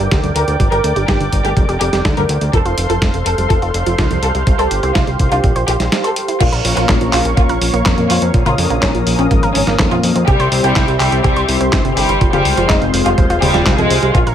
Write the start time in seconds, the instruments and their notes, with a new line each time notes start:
Already playing: analog synth pad A#4 D5 G5 D6
0.11 analog synth bass D2, synth arpeggio sound G3, kick, snare, closed hi-hat
0.24 analog synth bass D2, synth arpeggio sound G2, closed hi-hat
0.36 analog synth bass D2, violin section A#4, closed hi-hat
0.48 analog synth bass D2, synth arpeggio sound A3, closed hi-hat
0.60 analog synth bass G1, synth arpeggio sound G3, kick, closed hi-hat
0.72 analog synth bass G1, synth arpeggio sound G4, violin section A#4, closed hi-hat
0.84 analog synth bass D2, closed hi-hat
0.96 analog synth bass G1, synth arpeggio sound G3, closed hi-hat
1.08 analog synth bass G1, synth arpeggio sound A#3, violin section G4, kick, snare, closed hi-hat
1.20 analog synth bass G1, synth arpeggio sound D3, closed hi-hat
1.32 analog synth bass G1, kick, closed hi-hat
1.44 analog synth bass G1, synth arpeggio sound A3, violin section G4, closed hi-hat
1.56 analog synth bass F1, synth arpeggio sound G3, kick, closed hi-hat
1.69 analog synth bass F1, synth arpeggio sound G4, closed hi-hat
1.81 analog synth bass F1, violin section G4, closed hi-hat
1.93 analog synth bass F1, synth arpeggio sound G3, snare, closed hi-hat
2.05 analog synth bass D2, synth arpeggio sound G3, kick, snare, closed hi-hat
2.17 analog synth bass D2, synth arpeggio sound G2, violin section A#4, closed hi-hat
2.29 analog synth bass D2, closed hi-hat
2.41 analog synth bass D2, synth arpeggio sound A3, closed hi-hat
2.53 analog synth bass F1, synth arpeggio sound F3, analog synth pad A4 C5 F5 C6, violin section A4, kick, closed hi-hat
2.65 analog synth bass F1, synth arpeggio sound F4, closed hi-hat
2.78 analog synth bass F1, closed hi-hat
2.90 analog synth bass F1, synth arpeggio sound F3, violin section A4, closed hi-hat
3.02 analog synth bass F1, synth arpeggio sound A3, kick, snare, closed hi-hat
3.14 analog synth bass F1, synth arpeggio sound C3, closed hi-hat
3.26 analog synth bass F1, violin section A4, closed hi-hat
3.38 analog synth bass F1, synth arpeggio sound G3, closed hi-hat
3.50 analog synth bass F1, synth arpeggio sound F3, violin section A4, kick, closed hi-hat
3.62 analog synth bass F1, synth arpeggio sound F4, closed hi-hat
3.74 analog synth bass F1, closed hi-hat
3.86 analog synth bass F1, synth arpeggio sound F3, closed hi-hat
3.98 analog synth bass C2, synth arpeggio sound F3, kick, snare, closed hi-hat
4.11 analog synth bass C2, synth arpeggio sound F2, closed hi-hat
4.23 analog synth bass C2, violin section A4, closed hi-hat
4.35 analog synth bass C2, synth arpeggio sound G3, closed hi-hat
4.47 analog synth bass C2, synth arpeggio sound C4, analog synth pad G4, kick, closed hi-hat
4.59 analog synth bass C2, violin section A4, synth arpeggio sound C5, closed hi-hat
4.71 analog synth bass G1, closed hi-hat
4.83 analog synth bass C2, synth arpeggio sound C4, closed hi-hat
4.95 analog synth bass C2, synth arpeggio sound E4, violin section F4, kick, snare, closed hi-hat
5.07 analog synth bass C2, synth arpeggio sound G3, closed hi-hat
5.19 analog synth bass C2, kick, closed hi-hat
5.32 analog synth bass C2, synth arpeggio sound D4, violin section F4, closed hi-hat
5.44 analog synth bass A#1, synth arpeggio sound C4, kick, closed hi-hat
5.56 analog synth bass A#1, synth arpeggio sound C5, closed hi-hat
5.68 analog synth bass A#1, violin section G4, closed hi-hat
5.80 analog synth bass A#1, synth arpeggio sound E4, snare, closed hi-hat
5.92 synth arpeggio sound G3, snare, closed hi-hat
6.04 violin section A4, synth arpeggio sound C5, closed hi-hat
6.16 closed hi-hat
6.28 synth arpeggio sound E4, closed hi-hat
6.40 analog synth bass A#1, synth arpeggio sound A#3, violin section F4, analog synth pad A#4 C#5 F5 C#6, kick, closed hi-hat, crash
6.52 analog synth bass A#1, synth arpeggio sound A#4, closed hi-hat
6.65 analog synth bass A#1, analog polysynth A#2 F3 A#3 C#4 A#4, open hi-hat
6.77 analog synth bass A#1, synth arpeggio sound A#3, violin section F4, closed hi-hat
6.89 analog synth bass A#1, synth arpeggio sound C#4, kick, snare, clap, closed hi-hat
7.01 analog synth bass A#1, analog polysynth A#2 F3 A#3 C#4 A#4, synth arpeggio sound F3, closed hi-hat
7.13 analog synth bass A#1, violin section F4, clap, open hi-hat
7.25 analog synth bass A#1, synth arpeggio sound C4, closed hi-hat
7.37 analog synth bass A#1, analog polysynth A#2 F3 A#3 C#4 A#4, synth arpeggio sound A#3, violin section F4, kick, closed hi-hat
7.49 analog synth bass A#1, synth arpeggio sound A#4, closed hi-hat
7.61 analog synth bass A#1, analog polysynth A#2 F3 A#3 C#4 A#4, open hi-hat
7.73 analog synth bass A#1, synth arpeggio sound A#3, closed hi-hat
7.86 analog synth bass F2, synth arpeggio sound A#3, kick, snare, clap, closed hi-hat
7.98 analog synth bass F2, synth arpeggio sound A#2, analog polysynth A#2 F3 A#3 C#4 A#4, closed hi-hat
8.10 analog synth bass F2, violin section F4, open hi-hat
8.22 analog synth bass F2, synth arpeggio sound C4, closed hi-hat
8.34 analog synth bass A#1, synth arpeggio sound A#3, analog synth pad D#6, kick, closed hi-hat
8.46 analog synth bass A#1, violin section F4, synth arpeggio sound A#4, closed hi-hat, high tom
8.58 analog synth bass F2, analog polysynth A#2 F3 A#3 C#4 A#4, open hi-hat
8.70 analog synth bass A#1, synth arpeggio sound A#3, closed hi-hat
8.82 analog synth bass A#1, violin section C#4, synth arpeggio sound C#4, kick, snare, clap, closed hi-hat
8.95 analog synth bass A#1, analog polysynth A#2 F3 A#3 C#4 A#4, synth arpeggio sound F3, closed hi-hat
9.07 analog synth bass A#1, open hi-hat
9.19 analog synth bass A#1, synth arpeggio sound C4, violin section C#4, closed hi-hat
9.31 analog synth bass G#1, analog polysynth A#2 F3 A#3 C#4 A#4, synth arpeggio sound A#3, kick, closed hi-hat
9.43 analog synth bass G#1, synth arpeggio sound A#4, closed hi-hat
9.55 analog synth bass G#1, analog polysynth A#2 F3 A#3 C#4 A#4, violin section C#4, open hi-hat
9.67 analog synth bass G#1, synth arpeggio sound A#3, snare, closed hi-hat
9.79 analog synth bass F2, synth arpeggio sound A#3, kick, snare, clap, closed hi-hat
9.91 analog synth bass F2, synth arpeggio sound A#2, analog polysynth A#2 F3 A#3 C#4 A#4, violin section F4, closed hi-hat
10.03 analog synth bass F2, open hi-hat
10.15 analog synth bass F2, synth arpeggio sound C4, closed hi-hat
10.27 analog synth bass C2, violin section G3 G4, synth arpeggio sound C4, analog synth pad G4 C5 E5 C6, kick, closed hi-hat
10.40 analog synth bass C2, synth arpeggio sound C5, closed hi-hat
10.52 analog synth bass C2, analog polysynth C3 G3 C4 E4 C5, open hi-hat
10.64 analog synth bass C2, violin section G3 G4, synth arpeggio sound C4, closed hi-hat
10.76 analog synth bass C2, synth arpeggio sound E4, kick, snare, clap, closed hi-hat
10.88 analog synth bass C2, analog polysynth C3 G3 C4 E4 C5, synth arpeggio sound G3, closed hi-hat
11.00 analog synth bass C2, violin section G3 G4, clap, open hi-hat
11.12 analog synth bass C2, synth arpeggio sound C4, closed hi-hat
11.24 analog synth bass C2, analog polysynth C3 G3 C4 E4 C5, violin section G3 G4, synth arpeggio sound C4, kick, closed hi-hat
11.36 analog synth bass C2, synth arpeggio sound C5, closed hi-hat
11.49 analog synth bass C2, analog polysynth C3 G3 C4 E4 C5, open hi-hat
11.61 analog synth bass C2, synth arpeggio sound C4, closed hi-hat
11.73 analog synth bass G1, synth arpeggio sound C4, kick, snare, clap, closed hi-hat
11.85 analog synth bass G1, synth arpeggio sound C3, analog polysynth C3 G3 C4 E4 C5, closed hi-hat
11.97 analog synth bass G1, violin section G3 G4, open hi-hat
12.09 analog synth bass G1, synth arpeggio sound C4, closed hi-hat
12.21 analog synth bass F1, synth arpeggio sound F3, analog synth pad G#4 F5, kick, closed hi-hat
12.33 analog synth bass F1, violin section G3 G4, synth arpeggio sound F4, closed hi-hat, high tom
12.45 analog synth bass C2, analog polysynth G#3 C4 F4 C5, open hi-hat
12.57 analog synth bass F1, synth arpeggio sound F3, closed hi-hat
12.69 analog synth bass F1, synth arpeggio sound G#3, violin section D#4, kick, snare, clap, closed hi-hat
12.82 analog synth bass F1, synth arpeggio sound C3, analog polysynth G#3 C4 F4 C5, closed hi-hat
12.94 analog synth bass F1, open hi-hat
13.06 analog synth bass F1, synth arpeggio sound G3, violin section F4, closed hi-hat
13.18 analog synth bass D#1, synth arpeggio sound F3, analog polysynth G#3 C4 F4 C5, kick, closed hi-hat
13.30 analog synth bass D#1, synth arpeggio sound F4, closed hi-hat
13.42 analog synth bass D#1, violin section G3 G4, analog polysynth G#3 C4 F4 C5, open hi-hat, high tom
13.54 analog synth bass D#1, synth arpeggio sound F3, snare, closed hi-hat
13.66 analog synth bass C2, synth arpeggio sound F3, kick, snare, clap, closed hi-hat
13.78 analog synth bass C2, synth arpeggio sound F2, violin section G#3 G#4, analog polysynth G#3 C4 F4 C5, closed hi-hat
13.90 analog synth bass C2, open hi-hat
14.02 analog synth bass C2, synth arpeggio sound G3, closed hi-hat
14.15 analog synth bass A#1, synth arpeggio sound A#3, violin section F4, analog synth pad A#4 C#5 C#6, kick, closed hi-hat
14.27 analog synth bass A#1, synth arpeggio sound A#4, closed hi-hat